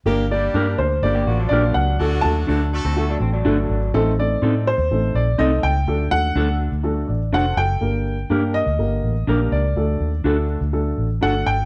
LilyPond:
<<
  \new Staff \with { instrumentName = "Grand piano" } { \time 4/4 \key g \minor \tempo 4 = 124 r8 d''4 c''8 d''4 d''8 fis''8~ | fis''8 a''2 r4. | r8 d''4 c''4 d''8 ees''8 g''8~ | g''8 fis''4 r4. fis''8 g''8~ |
g''4. ees''2 d''8~ | d''4. r4. fis''8 g''8 | }
  \new Staff \with { instrumentName = "Clean electric guitar" } { \time 4/4 \key g \minor r4 <d' g' bes'>16 r4. r16 <d' g' bes'>16 r8. | r4 <d' fis' a'>16 r4. r16 <d' fis' a'>16 r8. | r4 <c' ees' a'>16 r4. r16 <c' ees' a'>16 r8. | r4 <d' fis' a'>16 r4. r16 <d' fis' a'>16 r8. |
r4 <d' g' bes'>16 r4. r16 <d' g' bes'>16 r8. | r4 <d' fis' a'>16 r4. r16 <d' fis' a'>16 r8. | }
  \new Staff \with { instrumentName = "Upright piano" } { \time 4/4 \key g \minor << { r1 | r1 | r1 | r2 r8 d''8 <a' c''>8 <fis' a'>8~ |
<fis' a'>8 r2. r8 | r1 | } \\ { <bes d' g' bes'>8 <bes d' g' bes'>8 <bes d' g' bes'>8 r8 <bes d' g' bes'>8 r8 <bes d' bes' g''>8 r8 | <a d' fis' a'>8 <a d' fis' a'>8 <a d' fis' a'>8 r8 <a d' fis' a'>8 r8 <a d' fis' a'>8 r8 | <a c' ees' a'>8 <a c' ees'>8 <a c' ees' a'>8 r8 <a c' ees' a'>8 r8 <a c' ees' a'>8 r8 | <a d' fis' a'>8 <a d' fis' a'>8 <a d' fis' a'>8 r8 <a d' fis' a'>8 r4. |
<bes d' g' bes'>8 r8 <bes d' g' bes'>8 r8 <d bes g' bes'>8 r8 <bes d' g' bes'>8 r8 | <a d' fis' a'>8 r8 <a d' fis' a'>8 r8 <a d' fis' a'>8 r8 <a d' fis' a'>8 r8 | } >> }
  \new Staff \with { instrumentName = "Horn section" } { \time 4/4 \key g \minor <bes d' g' bes'>8 <g bes d' g'>4 r8 <g bes d' g'>8 <f bes d' f'>4 r8 | <fis a d' fis'>4 <fis a d' fis'>8 <a d' fis' a'>4 r4. | r1 | r1 |
r1 | r1 | }
  \new Staff \with { instrumentName = "Clean electric guitar" } { \time 4/4 \key g \minor r2 r16 <bes g'>16 <bes fis'>16 <fis d'>4~ <fis d'>16 | r4. r16 <c' a'>16 <a fis'>16 <fis d'>16 c'16 <fis d'>4~ <fis d'>16 | r1 | r1 |
r1 | r1 | }
  \new Staff \with { instrumentName = "Fingered electric bass" } { \clef bass \time 4/4 \key g \minor g,,4 g,8 d,8 g,,8 a,,8 bes,,8 cis,8 | d,8 ees,8 d,8. d,8. a,,8 g,,8 aes,,8 | a,,4 a,8. ees,16 a,,8 bes,,8 c,8 cis,8 | d,8 ees,8 d,8. d,8. a,,8 f,,8 fis,,8 |
g,,4 g,8. d,16 g,,8 a,,8 bes,,8 cis,8 | d,8 ees,8 d,8. d,8. a,,8 g,,8 aes,,8 | }
>>